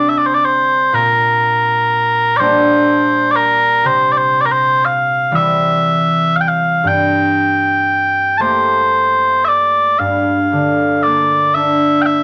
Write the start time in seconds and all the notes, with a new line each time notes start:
Already playing: C3 G3 C4 D4
0.09 E5
0.18 D5
0.26 C5
0.34 D5
0.45 C5
0.93 A#2 A#4
2.37 G3 A#3 C5 D5
2.41 D4
3.31 D5
3.36 A#4
3.84 C3 C5
4.12 D5
4.17 C5
4.41 D5
4.46 A#4
4.51 C5
4.85 F5
5.31 E3 G3 C4
5.36 E5
6.36 F5
6.41 G5
6.48 F5
6.84 G2 G5
8.38 A3 A#3 G4 C5 A5
9.45 D5 E5
9.99 G2 F5
10.52 D3
11.03 A#3 D5
11.54 D4 E5
12.02 G5
12.06 E5